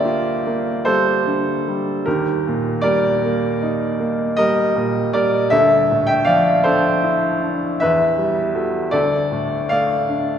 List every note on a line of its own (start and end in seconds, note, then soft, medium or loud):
0.00 2.02 D2 medium
0.00 1.26 D3 soft
0.00 0.87 G3 soft
0.00 0.29 A#3 soft
0.00 0.81 A#4 medium
0.00 0.85 C5 medium
0.00 2.08 D5 medium
0.00 2.08 E5 medium
0.00 2.08 F5 medium
0.00 2.07 G5 medium
0.05 0.68 F4 soft
0.47 1.09 A#3 soft
0.85 1.50 G3 soft
0.85 2.02 A4 medium
0.85 2.06 C5 medium
1.26 1.90 D3 soft
1.68 2.07 G3 soft
2.06 5.49 D#2 medium
2.06 2.81 G4 medium
2.06 2.82 A#4 medium
2.47 3.08 A#2 soft
2.81 3.46 G3 soft
2.81 4.33 A#4 medium
2.81 4.36 D5 medium
3.25 3.85 A#3 soft
3.62 4.22 D#4 soft
4.00 4.61 A#3 soft
4.37 5.00 G3 soft
4.37 5.10 A#4 medium
4.37 5.14 D#5 medium
4.76 5.37 A#2 soft
5.13 5.52 G3 soft
5.13 5.49 A#4 medium
5.13 5.52 D5 medium
5.50 7.76 D2 medium
5.50 6.04 A4 medium
5.50 6.06 E5 medium
5.91 6.50 A2 soft
6.07 6.25 E5 medium
6.07 6.26 G5 medium
6.25 6.88 F3 soft
6.25 6.61 D5 medium
6.25 6.64 F5 medium
6.64 7.27 D4 medium
6.64 7.76 A4 medium
6.64 7.80 C5 medium
7.04 7.65 E4 soft
7.41 7.80 D4 soft
7.80 8.90 E2 medium
7.80 8.17 B4 medium
7.80 8.18 E5 medium
8.18 8.78 G3 soft
8.55 8.88 F#4 soft
8.55 8.89 A4 soft
8.91 10.39 D2 medium
8.91 9.66 A4 medium
8.91 9.69 D5 medium
9.32 9.94 A2 soft
9.69 10.32 A3 soft
9.69 10.39 D5 medium
9.69 10.39 F5 medium
10.09 10.39 D4 soft